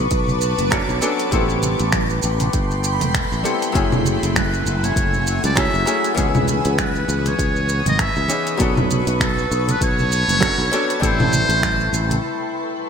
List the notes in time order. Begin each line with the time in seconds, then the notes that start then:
Already playing: F#3 B3 C#4 D4 A4 B4 A5 C#6 D6
0.11 B1, kick, closed hi-hat, shaker
0.28 low conga, shaker
0.41 shaker
0.58 F#1, closed hi-hat, high conga, shaker
0.71 F#3 B3 C#4 D4 A4, finger snap, kick, closed hi-hat, shaker
0.89 B1, shaker
1.01 F#3 B3 C#4 D4 A4, closed hi-hat, shaker
1.19 closed hi-hat, shaker
1.31 A1 G3 A3 B3 C4 E4 A4 G5 B5 C6, kick, closed hi-hat, shaker
1.49 shaker
1.63 closed hi-hat, low conga, shaker
1.79 A1, closed hi-hat, shaker
1.92 finger snap, kick, high conga, shaker
2.10 shaker
2.23 A1, shaker
2.40 closed hi-hat, low conga, shaker
2.53 G1, kick, closed hi-hat, shaker
2.71 shaker
2.84 shaker
3.01 E1, closed hi-hat, high conga, low conga, shaker
3.15 finger snap, kick, closed hi-hat, shaker
3.32 A1, shaker
3.44 G3 B3 C4 E4 A4, closed hi-hat, shaker
3.62 closed hi-hat, shaker
3.72 F#1 F#3 A3 C#4 E4 F#5 G#5 E6, kick, closed hi-hat, shaker
3.76 G#4
3.92 low conga, shaker
4.05 closed hi-hat, low conga, shaker
4.23 F#1, closed hi-hat, shaker
4.36 B4, finger snap, kick, high conga, shaker
4.54 shaker
4.66 F#1, shaker
4.84 C#5, closed hi-hat, low conga, shaker
4.96 F#1, kick, closed hi-hat, shaker
5.14 low conga, shaker
5.27 shaker
5.44 C#2 D5, closed hi-hat, high conga, shaker
5.55 F#3 A3 C#4 E4 G#4 E5, finger snap, kick, closed hi-hat, shaker
5.74 F#1, shaker
5.85 F#3 A3 C#4 E4 G#4, closed hi-hat, shaker
6.04 closed hi-hat, shaker
6.15 C#2 E3 B3 C#4 D#4 G#4 B4 C#6 D#6, kick, closed hi-hat, shaker
6.35 low conga, shaker
6.48 closed hi-hat, low conga, shaker
6.65 C#2, closed hi-hat, shaker
6.78 B4, finger snap, kick, high conga, shaker
6.96 shaker
7.08 C#2, shaker
7.26 C#5, closed hi-hat, low conga, shaker
7.39 C#2, kick, closed hi-hat, shaker
7.56 shaker
7.69 shaker
7.86 G#1 D#5, closed hi-hat, high conga, low conga, shaker
7.99 E5, finger snap, kick, closed hi-hat, shaker
8.16 C#2, shaker
8.28 E3 B3 C#4 D#4 G#4, closed hi-hat, shaker
8.47 closed hi-hat, shaker
8.57 B1 F#3 B3 C#4 D4 A4 A5, kick, closed hi-hat, shaker
8.77 low conga, shaker
8.91 closed hi-hat, low conga, shaker
9.07 B1, closed hi-hat, shaker
9.20 A4, finger snap, kick, high conga, shaker
9.38 shaker
9.51 B1, shaker
9.68 B4, closed hi-hat, low conga, shaker
9.81 B1 C#5, kick, closed hi-hat, shaker
9.99 low conga, shaker
10.12 shaker
10.28 F#1, closed hi-hat, high conga, shaker
10.40 F#3 B3 C#4 D4 A4, finger snap, kick, closed hi-hat, shaker
10.58 B1, shaker
10.71 F#3 B3 C#4 D4 A4, closed hi-hat, shaker
10.90 closed hi-hat, shaker
11.00 A1 G3 A3 C4 E4 A4 G5 B5 C6, kick, closed hi-hat, shaker
11.04 C5
11.20 low conga, shaker
11.33 closed hi-hat, low conga, shaker
11.49 A1, closed hi-hat, shaker
11.63 finger snap, kick, high conga, shaker
11.80 shaker
11.93 A1, closed hi-hat, shaker
12.10 closed hi-hat, low conga, shaker